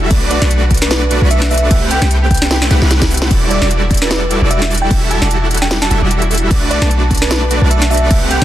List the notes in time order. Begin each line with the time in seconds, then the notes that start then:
Already playing: E1 D4 E4
0.02 F#4
0.11 B1 A3 D4 F#4 B4 D5, kick, closed hi-hat, crash
0.22 D4
0.31 F#4 D5, closed hi-hat
0.42 B1 A3 D4 F#4 B4 D5, snare
0.51 A4, closed hi-hat
0.62 F#4
0.71 kick, closed hi-hat
0.74 closed hi-hat
0.77 closed hi-hat
0.82 A4 B4, snare
0.91 D4, snare, closed hi-hat
1.02 D4
1.11 F#4, closed hi-hat
1.22 B1 A3 D4 F#4 B4 D5
1.31 A4 E5, closed hi-hat
1.42 F#4, snare, closed hi-hat
1.51 F#4 E5, closed hi-hat, open hi-hat
1.58 closed hi-hat
1.62 A4
1.71 C2 A3 C4 E4 G4 B4 E5 F#5, kick, closed hi-hat, crash
1.82 E4
1.91 G4 G5, closed hi-hat
2.02 C2 A3 C4 G4 B4 G5, snare
2.11 A4, closed hi-hat
2.22 G4
2.31 G5, kick, closed hi-hat
2.34 closed hi-hat
2.37 closed hi-hat
2.42 A4, snare
2.51 E4, snare, closed hi-hat
2.62 E4, snare
2.71 C2 A3 C4 G4 B4 F#5, snare, closed hi-hat
2.82 C2 A3 C4 E4 G4 B4 F#5, snare
2.91 E4, snare, closed hi-hat
3.02 A4, kick, snare, closed hi-hat
3.11 E4, closed hi-hat, open hi-hat
3.17 closed hi-hat
3.22 C5, snare
3.31 E1 G3 D4 E4 F#4 A4 D5, kick, closed hi-hat, crash
3.42 D4
3.51 E4 D5, closed hi-hat
3.62 E1 G3 E4 F#4 A4 D5, snare
3.71 F#4, closed hi-hat
3.82 E4
3.91 E4, kick, closed hi-hat
3.94 closed hi-hat
3.97 closed hi-hat
4.02 F#4 B4, snare
4.11 D4, snare, closed hi-hat
4.22 D4
4.31 E4, closed hi-hat
4.42 E1 G3 E4 F#4 A4 D5
4.50 F#4 E5, closed hi-hat
4.62 E4, snare, closed hi-hat
4.71 E4, closed hi-hat, open hi-hat
4.78 closed hi-hat
4.82 F#4 G5
4.91 E1 G3 D4 E4 F#4 A4 E5, kick, closed hi-hat, crash
5.02 D4
5.11 E4 A5, closed hi-hat
5.22 E1 G3 E4 F#4 A4 D5 F#5, snare
5.31 F#4, closed hi-hat
5.42 E4
5.51 E4, closed hi-hat
5.54 closed hi-hat
5.57 closed hi-hat
5.62 F#4 G5, snare
5.71 D4 G5, snare, closed hi-hat
5.82 D4 A5, snare
5.91 E1 G3 E4 F#4 A4 E5 A5, closed hi-hat
6.02 E1 G3 E4 F#4 A4 D5 E5
6.11 F#4, closed hi-hat
6.22 E4, closed hi-hat
6.31 E4, closed hi-hat, open hi-hat
6.38 closed hi-hat
6.42 F#4
6.51 B1 A3 D4 F#4 B4 D5, kick, closed hi-hat, crash
6.62 D4
6.71 F#4 D5, closed hi-hat
6.82 B1 A3 D4 F#4 B4 D5 A5, snare
6.91 A4, closed hi-hat
7.02 F#4
7.11 F#4, kick, closed hi-hat
7.15 closed hi-hat
7.17 closed hi-hat
7.22 A4 B4, snare
7.31 D4, snare, closed hi-hat
7.42 D4
7.51 F#4, closed hi-hat
7.61 B1 A3 D4 F#4 B4 D5 A5
7.71 A4 E5, closed hi-hat
7.82 F#4, snare, closed hi-hat
7.91 F#4 E5, closed hi-hat, open hi-hat
7.97 closed hi-hat
8.02 A4
8.11 C2 A3 C4 E4 G4 B4 E5 F#5, kick, closed hi-hat, crash
8.22 E4
8.31 G4 G5, closed hi-hat